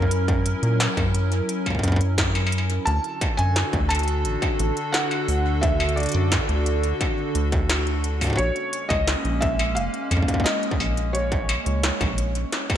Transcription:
Already playing: F#2 F#3 C#4 E4 A#4
0.02 kick
0.11 closed hi-hat
0.28 kick, closed hi-hat
0.46 closed hi-hat
0.63 A#2, closed hi-hat
0.80 snare, closed hi-hat
0.97 F#2, kick, closed hi-hat, struck metal
1.15 closed hi-hat
1.32 closed hi-hat
1.49 closed hi-hat
1.66 kick, closed hi-hat, struck metal
1.70 kick
1.75 kick
1.79 kick
1.83 F#2, kick, closed hi-hat
1.88 kick
1.92 kick
1.96 kick
2.01 closed hi-hat
2.18 kick, snare, closed hi-hat
2.35 closed hi-hat, struck metal
2.47 struck metal
2.52 closed hi-hat
2.58 struck metal
2.70 closed hi-hat
2.85 D2 D3 D4 F#4 A4 A5, closed hi-hat
3.04 closed hi-hat
3.21 kick, closed hi-hat, struck metal
3.37 F#2 G#5, closed hi-hat
3.56 snare, closed hi-hat
3.73 D2, kick, closed hi-hat
3.89 A5, closed hi-hat, struck metal
3.95 closed hi-hat
3.99 closed hi-hat
4.03 closed hi-hat
4.08 closed hi-hat
4.25 A1, closed hi-hat
4.42 kick, closed hi-hat, struck metal
4.59 A1, closed hi-hat
4.77 closed hi-hat
4.92 F#5, snare, closed hi-hat
5.11 closed hi-hat, struck metal
5.28 D2, open hi-hat
5.61 E5, kick, closed hi-hat
5.80 struck metal
5.89 closed hi-hat
5.96 D5, closed hi-hat
6.00 closed hi-hat
6.03 closed hi-hat
6.06 closed hi-hat
6.09 closed hi-hat
6.12 closed hi-hat
6.14 F#2, closed hi-hat
6.32 kick, snare, closed hi-hat, struck metal
6.49 D2, closed hi-hat
6.66 closed hi-hat
6.83 closed hi-hat
7.01 kick, closed hi-hat, struck metal
7.35 D2, closed hi-hat
7.52 kick, closed hi-hat
7.70 snare, closed hi-hat, struck metal
7.87 closed hi-hat
8.04 closed hi-hat
8.21 kick, open hi-hat, struck metal
8.24 kick
8.27 kick
8.30 kick
8.33 kick
8.36 A#1 G#3 A#3 C#4 C#5, kick, closed hi-hat
8.56 closed hi-hat
8.73 closed hi-hat
8.89 C#2 D#5, kick, closed hi-hat, struck metal
9.08 snare, closed hi-hat
9.25 A#1, closed hi-hat
9.41 E5, kick, closed hi-hat
9.59 closed hi-hat, struck metal
9.75 F1 F5, closed hi-hat
9.94 closed hi-hat
10.11 F2, kick, closed hi-hat, struck metal
10.17 kick
10.23 kick
10.28 kick, closed hi-hat
10.34 kick
10.40 kick
10.44 D#5, snare, closed hi-hat
10.63 closed hi-hat
10.71 kick
10.80 A#1, open hi-hat, struck metal
10.97 closed hi-hat
11.13 C#5, closed hi-hat
11.32 kick, closed hi-hat
11.49 closed hi-hat, struck metal
11.66 C#2, closed hi-hat
11.83 snare, closed hi-hat
12.01 A#1, kick, closed hi-hat, struck metal
12.18 closed hi-hat
12.35 closed hi-hat
12.52 snare, closed hi-hat
12.70 kick, closed hi-hat, struck metal

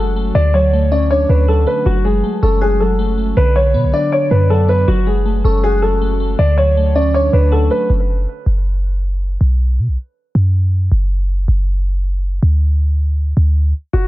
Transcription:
Already playing: F#1 F#3 G#3 A3 C#4 F#4 A4
0.16 A3
0.35 D2 D3 D5
0.54 F#3 C#5
0.73 A3
0.92 C#4 D5
1.10 D4 C#5
1.29 D2 D3 B4
1.48 F#3 A4
1.67 A3 B4
1.86 F#1 F#3 F#4
2.05 G#3 G#4
2.24 A3
2.43 F#1 C#4 A4
2.61 F#4 G#4
2.80 F#3 A4
2.99 A3
3.18 A3
3.37 B1 D3 B4
3.55 F#3 C#5
3.74 B2 B3
3.84 B1
3.93 D4 D5
4.12 C#5 D5
4.30 F#2 D3 B4
4.50 F#3 A4
4.68 B3 B4
4.88 F#1 F#3 F#4
5.07 G#3 G#4
5.25 A3
5.44 F#1 C#4 A4
5.63 F#4 G#4
5.82 F#3 A4
6.01 A3
6.20 A3
6.39 D2 D3 D5
6.58 F#3 C#5
6.77 A3
6.95 C#4 D5
7.14 D4 C#5
7.33 D2 D3 B4
7.52 F#3 A4
7.70 A3 B4
7.90 F#1
8.46 F#1
9.41 B1
9.78 B2
9.88 B1
10.35 F#2
10.92 F#1
11.48 F#1
12.43 D2
13.37 D2
13.93 F#1 F#4

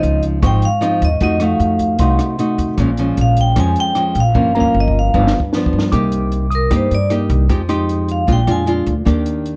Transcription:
Already playing: C#3 F3 C4 D#4 D#5
0.03 C#2, closed hi-hat
0.23 kick, closed hi-hat
0.42 G#1 G#2 F3 C4 D#4 C#6, kick, cross-stick, closed hi-hat
0.46 G5
0.62 F5, closed hi-hat
0.81 F3 C4 D#4, cross-stick, closed hi-hat
1.01 D#2 D#5, kick, closed hi-hat
1.21 F2 F3 A3 D#4 F#4 D#5, kick, closed hi-hat
1.40 A3 D#4 F#4 F5, cross-stick, closed hi-hat
1.60 F2, closed hi-hat
1.79 kick, closed hi-hat
1.99 C2 C3 A3 D#4 F#4 C6, kick, closed hi-hat
2.19 cross-stick, closed hi-hat
2.39 A3 D#4 F#4, closed hi-hat
2.58 F2, kick, closed hi-hat
2.78 A#1 A#2 F3 G#3 C#4, kick, cross-stick, closed hi-hat
2.97 F3 G#3 C#4, closed hi-hat
3.17 A#1, closed hi-hat
3.21 F5
3.37 kick, closed hi-hat
3.41 G5
3.56 F2 F3 G#3 C#4 G#5, kick, cross-stick, closed hi-hat
3.76 closed hi-hat
3.80 G5
3.95 F3 G#3 C#4, cross-stick, closed hi-hat
4.15 A#1, kick, closed hi-hat
4.20 F5
4.34 G1 G2 F3 A#3 C#4, kick
4.55 F3 A#3 C#4 A#5
4.60 F5, kick
4.74 G1
4.80 D#5
4.88 kick
4.99 F5
5.14 G1 G2 F3 B3 D4, kick
5.27 snare
5.40 kick
5.53 F3 B3 D4, snare
5.66 kick
5.73 G2
5.79 snare
5.92 C2 C3 A#3 D#4 G4 D6, kick, cross-stick, closed hi-hat
6.12 closed hi-hat
6.32 closed hi-hat
6.50 D#6, closed hi-hat
6.55 A#4
6.70 G2 A#3 D#4 G4, kick, cross-stick, closed hi-hat
6.76 C5
6.91 G2 D5, closed hi-hat
7.10 A#3 D#4 G4, cross-stick, closed hi-hat
7.29 C2, closed hi-hat
7.49 F2 F3 G#3 D#4 G4, kick, closed hi-hat
7.69 G#3 D#4 G4 C6, cross-stick, closed hi-hat
7.89 closed hi-hat
8.08 F5, closed hi-hat
8.27 A#1 A#2 G#3 D4 F4, kick, closed hi-hat
8.33 G5
8.47 F2 G#3 D4 F4, cross-stick, closed hi-hat
8.51 G#5
8.66 G#3 D4 F4, closed hi-hat
8.86 D2, closed hi-hat
9.05 D#2 D#3 A#3 D4 G4, kick, cross-stick, closed hi-hat
9.26 closed hi-hat
9.46 closed hi-hat

